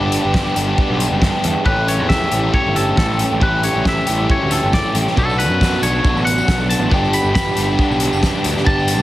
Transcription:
Already playing: picked electric bass G1, overdriven electric guitar G2 D3 G3 B3 D4 G4, tonewheel organ B4 F#5 G5, clean electric guitar D5
0.12 closed hi-hat
0.24 picked electric bass G1
0.34 kick, snare
0.55 picked electric bass G1, overdriven electric guitar B3 D4 G4, closed hi-hat
0.78 kick
0.90 picked electric bass B1
1.00 closed hi-hat
1.11 picked electric bass F#1
1.22 kick, snare
1.44 picked electric bass E2, closed hi-hat
1.64 picked electric bass A1, overdriven electric guitar A2 E3 G3 A3 C#4, tonewheel organ A4 E5, clean electric guitar B4, kick
1.68 overdriven electric guitar G4
1.88 clean electric guitar C#5, closed hi-hat
2.00 picked electric bass E2
2.09 clean electric guitar E5, kick, snare
2.31 picked electric bass A1, overdriven electric guitar E3 A3 C#4 G4, closed hi-hat
2.54 clean electric guitar C#5, kick
2.66 picked electric bass G1
2.76 clean electric guitar A4, closed hi-hat
2.97 picked electric bass A1, clean electric guitar A4, kick, snare
3.19 closed hi-hat
3.32 picked electric bass A1
3.40 picked electric bass A1, overdriven electric guitar A2 E3 G3 A3 C#4 G4, clean electric guitar B4, kick
3.63 clean electric guitar C#5, closed hi-hat
3.76 picked electric bass A1
3.85 clean electric guitar E5, kick, snare
4.06 picked electric bass A1, overdriven electric guitar E3 A3 C#4 G4, closed hi-hat
4.30 clean electric guitar C#5, kick
4.42 picked electric bass D2
4.51 clean electric guitar A4, closed hi-hat
4.63 picked electric bass G1
4.73 clean electric guitar D5, kick, snare
4.95 picked electric bass A1, closed hi-hat
5.07 snare
5.15 picked electric bass B1, overdriven electric guitar B2 F#3 B3 D4 F#4, tonewheel organ D4 F#5 B5, clean electric guitar A4, kick, tambourine
5.29 tambourine
5.39 clean electric guitar B4, closed hi-hat, tambourine
5.49 picked electric bass F#2
5.61 kick, snare, tambourine
5.73 tambourine
5.80 picked electric bass B1, overdriven electric guitar B3 D4 F#4, clean electric guitar C#5, closed hi-hat, tambourine
5.84 overdriven electric guitar F#3
5.95 tambourine
6.05 kick, tambourine
6.14 picked electric bass A1, tambourine
6.25 clean electric guitar F#5, closed hi-hat
6.38 tambourine
6.48 picked electric bass B1, kick, snare, tambourine
6.60 tambourine
6.69 clean electric guitar A5, closed hi-hat, tambourine
6.80 picked electric bass A1, tambourine
6.89 picked electric bass G1, overdriven electric guitar G2 D3 G3 B3 D4 G4, tonewheel organ G4 B5, kick, tambourine
7.04 tambourine
7.13 clean electric guitar B5, closed hi-hat, tambourine
7.24 picked electric bass G1
7.35 clean electric guitar B5, kick, snare, tambourine
7.48 tambourine
7.55 picked electric bass G1, overdriven electric guitar B3 D4 G4, closed hi-hat, tambourine
7.69 tambourine
7.79 kick, tambourine
7.90 picked electric bass B1, tambourine
8.00 closed hi-hat
8.12 picked electric bass F#1, tambourine
8.23 kick, snare, tambourine
8.35 tambourine
8.44 picked electric bass D2, closed hi-hat, tambourine
8.57 snare, tambourine
8.65 picked electric bass G1, overdriven electric guitar G2 D3 G3 B3 D4 G4, clean electric guitar A5, kick
8.69 tambourine
8.79 tambourine
8.88 closed hi-hat, tambourine

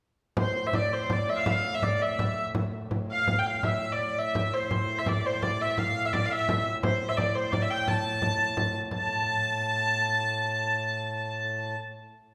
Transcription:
0.37 harmonium A2, hurdy-gurdy C5, frame drum
0.66 hurdy-gurdy E5
0.73 hurdy-gurdy D5, frame drum
0.92 hurdy-gurdy C5, frame drum
1.10 hurdy-gurdy D5, frame drum
1.29 hurdy-gurdy E5
1.35 hurdy-gurdy E5 F5
1.46 hurdy-gurdy F5, frame drum
1.74 hurdy-gurdy E5
1.82 hurdy-gurdy D5, frame drum
2.01 hurdy-gurdy E5, frame drum
2.19 frame drum
2.55 frame drum
2.91 frame drum
3.09 hurdy-gurdy F5, frame drum
3.27 frame drum
3.38 hurdy-gurdy G5
3.46 hurdy-gurdy F5
3.63 hurdy-gurdy E5, frame drum
3.92 hurdy-gurdy D5
4.00 hurdy-gurdy D5
4.18 hurdy-gurdy E5
4.35 frame drum
4.53 hurdy-gurdy C5
4.71 harmonium A2, hurdy-gurdy C5, frame drum
4.98 hurdy-gurdy E5
5.06 hurdy-gurdy D5, frame drum
5.24 hurdy-gurdy C5, frame drum
5.42 hurdy-gurdy D5, frame drum
5.61 hurdy-gurdy E5
5.78 hurdy-gurdy F5, frame drum
6.05 hurdy-gurdy E5
6.13 hurdy-gurdy D5, frame drum
6.25 hurdy-gurdy F5
6.31 hurdy-gurdy E5, frame drum
6.49 frame drum
6.83 hurdy-gurdy C5, frame drum
7.08 hurdy-gurdy E5
7.17 hurdy-gurdy D5, frame drum
7.35 hurdy-gurdy C5, frame drum
7.52 hurdy-gurdy D5, frame drum
7.61 hurdy-gurdy E5
7.70 hurdy-gurdy G5
7.88 hurdy-gurdy A5, frame drum
8.05 frame drum
8.22 frame drum
8.57 frame drum
8.75 frame drum
8.91 harmonium A2, hurdy-gurdy A5, frame drum

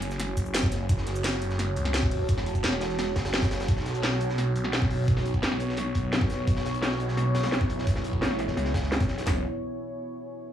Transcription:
Already playing: detuned saw bass F#1, ambient pad F#4 C#5 G#5, downlifter
0.02 closed hi-hat
0.11 snare, shaker
0.20 snare, closed hi-hat, shaker
0.37 detuned saw bass F#1, kick, closed hi-hat, shaker
0.46 shaker
0.54 snare, closed hi-hat, shaker
0.63 kick, snare
0.71 snare, closed hi-hat
0.89 detuned saw bass F#1, ambient pad A5, kick, closed hi-hat, shaker
0.98 snare
1.06 snare, closed hi-hat
1.15 closed hi-hat, shaker
1.24 snare, closed hi-hat, shaker
1.33 snare
1.42 closed hi-hat
1.50 snare, shaker
1.59 snare, closed hi-hat, shaker
1.76 detuned saw bass C#2, closed hi-hat, shaker
1.85 snare, shaker
1.94 snare, closed hi-hat, shaker
2.03 kick
2.11 closed hi-hat, open hi-hat
2.29 detuned saw bass E1, kick, closed hi-hat, shaker
2.38 snare
2.46 closed hi-hat
2.55 kick, shaker
2.64 snare, closed hi-hat, shaker
2.72 snare
2.81 snare, closed hi-hat
2.90 snare, shaker
2.99 snare, closed hi-hat, shaker
3.16 detuned saw bass F#1, kick, snare, closed hi-hat, shaker
3.25 snare, closed hi-hat, shaker
3.33 snare, closed hi-hat, shaker
3.42 kick, snare, closed hi-hat
3.51 detuned saw bass F#1, snare, closed hi-hat
3.60 snare, closed hi-hat
3.68 detuned saw bass B1, ambient pad B3 C#5, kick, closed hi-hat, shaker
3.77 snare
3.86 snare, closed hi-hat
3.95 closed hi-hat, shaker
4.03 snare, closed hi-hat, shaker
4.12 snare
4.21 closed hi-hat
4.30 snare, shaker
4.38 snare, closed hi-hat, shaker
4.56 detuned saw bass B1, closed hi-hat, shaker
4.64 snare, shaker
4.73 snare, closed hi-hat, shaker
4.82 kick
4.90 closed hi-hat, open hi-hat
5.08 kick, closed hi-hat, shaker
5.17 snare
5.25 closed hi-hat
5.34 kick, shaker
5.43 snare, closed hi-hat
5.52 snare
5.60 closed hi-hat
5.69 snare, shaker
5.77 snare, closed hi-hat, shaker
5.95 detuned saw bass B1, kick, closed hi-hat, shaker
6.04 shaker
6.12 snare, closed hi-hat, shaker
6.21 kick, snare
6.30 snare, closed hi-hat
6.48 detuned saw bass B1, ambient pad E4, kick, closed hi-hat, shaker
6.56 snare
6.65 snare, closed hi-hat
6.74 closed hi-hat, shaker
6.82 snare, closed hi-hat
6.91 snare
7.00 closed hi-hat
7.09 snare, shaker
7.17 snare, closed hi-hat
7.35 detuned saw bass B1, snare, closed hi-hat, shaker
7.43 snare, closed hi-hat
7.52 snare, closed hi-hat
7.61 kick
7.70 closed hi-hat
7.79 snare
7.87 kick, closed hi-hat
7.95 snare
8.04 closed hi-hat
8.13 kick, shaker
8.22 detuned saw bass A1, snare, closed hi-hat
8.31 snare
8.39 snare, closed hi-hat
8.48 snare
8.57 detuned saw bass C#2, snare, closed hi-hat
8.65 snare
8.74 kick, snare, closed hi-hat
8.83 snare
8.92 snare, closed hi-hat
9.00 kick, closed hi-hat
9.08 detuned saw bass B1, snare, closed hi-hat
9.18 snare, closed hi-hat
9.27 detuned saw bass F#1, snare, clap, floor tom

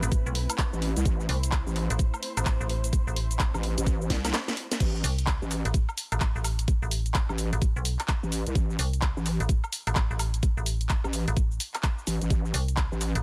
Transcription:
Already playing: string section A3 C4 E4 B4
0.03 fm bass A1, closed hi-hat, cabasa
0.12 kick, closed hi-hat, cabasa
0.26 fm bass B1, cabasa
0.35 open hi-hat
0.50 closed hi-hat, cabasa, high woodblock
0.58 kick, clap, closed hi-hat, cabasa
0.73 wobble bass A1, cabasa
0.82 open hi-hat
0.96 wobble bass C2, closed hi-hat, cabasa
1.05 wobble bass A1, string section C5, kick, closed hi-hat, cabasa
1.20 cabasa
1.29 fm bass C2, open hi-hat
1.43 closed hi-hat, cabasa
1.52 kick, clap, closed hi-hat, cabasa
1.67 wobble bass A1, cabasa
1.75 clap, open hi-hat
1.90 fm bass A1, closed hi-hat, cabasa
1.99 kick, closed hi-hat, cabasa
2.14 cabasa, high woodblock
2.23 open hi-hat
2.37 fm bass A1, closed hi-hat, cabasa, high woodblock
2.45 kick, clap, closed hi-hat, cabasa
2.60 fm bass A1, cabasa
2.69 open hi-hat
2.84 closed hi-hat, cabasa
2.93 kick, closed hi-hat, cabasa
3.07 fm bass A1, cabasa
3.16 open hi-hat
3.31 closed hi-hat, cabasa
3.39 kick, clap, closed hi-hat, cabasa
3.54 wobble bass A1, cabasa, high woodblock
3.63 open hi-hat
3.78 wobble bass A1, closed hi-hat, cabasa
3.87 kick, closed hi-hat, cabasa
4.01 cabasa
4.10 wobble bass C2, kick, snare, open hi-hat
4.25 snare, closed hi-hat, cabasa, high woodblock
4.33 snare, clap, closed hi-hat, cabasa
4.48 snare, cabasa
4.57 open hi-hat
4.72 snare, closed hi-hat, cabasa
4.80 wobble bass A1, kick, closed hi-hat, crash, cabasa
4.95 cabasa
5.04 fm bass C2, open hi-hat, cabasa
5.18 closed hi-hat, cabasa
5.27 kick, clap, closed hi-hat, cabasa
5.42 wobble bass A1, cabasa
5.50 clap, open hi-hat, cabasa
5.65 fm bass A1, closed hi-hat, cabasa
5.74 kick, closed hi-hat, cabasa
5.89 cabasa, high woodblock
5.98 open hi-hat, cabasa
6.12 fm bass A1, closed hi-hat, cabasa, high woodblock
6.20 kick, clap, closed hi-hat, cabasa
6.36 fm bass A1, cabasa
6.44 open hi-hat, cabasa, high woodblock
6.59 closed hi-hat, cabasa
6.68 kick, closed hi-hat, cabasa
6.82 fm bass A1, cabasa
6.91 open hi-hat, cabasa
7.06 closed hi-hat, cabasa
7.14 kick, clap, closed hi-hat, cabasa
7.29 wobble bass A1, cabasa, high woodblock
7.38 open hi-hat, cabasa
7.53 fm bass A1, closed hi-hat, cabasa
7.62 kick, closed hi-hat, cabasa
7.76 fm bass B1, cabasa
7.85 open hi-hat, cabasa
7.99 clap, closed hi-hat, cabasa, high woodblock
8.08 kick, clap, closed hi-hat, cabasa
8.23 wobble bass A1, cabasa
8.32 open hi-hat, cabasa
8.47 wobble bass C2, closed hi-hat, cabasa
8.55 wobble bass A1, kick, closed hi-hat, cabasa
8.70 cabasa
8.79 fm bass C2, open hi-hat, cabasa
8.93 closed hi-hat, cabasa
9.02 kick, clap, closed hi-hat, cabasa
9.17 wobble bass A1, cabasa
9.25 clap, open hi-hat, cabasa
9.40 fm bass A1, closed hi-hat, cabasa
9.49 kick, closed hi-hat, cabasa
9.64 cabasa, high woodblock
9.73 open hi-hat, cabasa
9.87 fm bass A1, closed hi-hat, cabasa, high woodblock
9.95 kick, clap, closed hi-hat, cabasa
10.11 fm bass A1, cabasa
10.19 open hi-hat, cabasa, high woodblock
10.34 closed hi-hat, cabasa
10.43 kick, closed hi-hat, cabasa
10.57 fm bass A1, cabasa
10.66 open hi-hat, cabasa
10.81 closed hi-hat, cabasa
10.89 kick, clap, closed hi-hat, cabasa
11.04 wobble bass A1, cabasa, high woodblock
11.13 open hi-hat, cabasa
11.28 fm bass A1, closed hi-hat, cabasa
11.37 kick, closed hi-hat, cabasa
11.51 cabasa
11.60 open hi-hat, cabasa
11.74 clap, closed hi-hat, cabasa, high woodblock
11.83 kick, clap, closed hi-hat, cabasa
11.98 cabasa
12.07 wobble bass A1, open hi-hat, cabasa
12.22 wobble bass A1, closed hi-hat, cabasa
12.30 wobble bass A1, kick, closed hi-hat, cabasa
12.45 cabasa
12.54 fm bass C2, open hi-hat, cabasa
12.68 closed hi-hat, cabasa
12.77 kick, clap, closed hi-hat, cabasa
12.92 wobble bass A1, cabasa
13.00 clap, open hi-hat, cabasa
13.15 fm bass A1, closed hi-hat, cabasa

